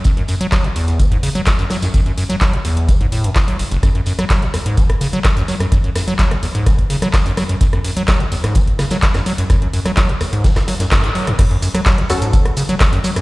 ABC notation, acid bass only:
X:1
M:4/4
L:1/16
Q:1/4=127
K:F#m
V:1 name="Acid bass" clef=bass
F,, F,, F,, F, F, G,, E,,2 F, G,, C, F, z F,, F, F,, | F,, F,, F,, F, F, G,, E,,2 F, G,, A,, F,, z F, F,,, F,,, | F,, F,, F,, F, F, G,, E,, G,, F, z C, F, z F,, F, F,, | F,, F,, F,, F, F, G,, E,, G,, F, z C, F, z F,, F, F,, |
F,, F,, F,, F, F, G,, E,, G,, F, z C, F, z F,, F, F,, | F,, F,, F,, F, F, G,, E,, G,, F, z F, F,, F,, A,, F, F,, | F,, F,, F,, F, F, G,, E,, G,, F, z C, F, z F,, F, F,, |]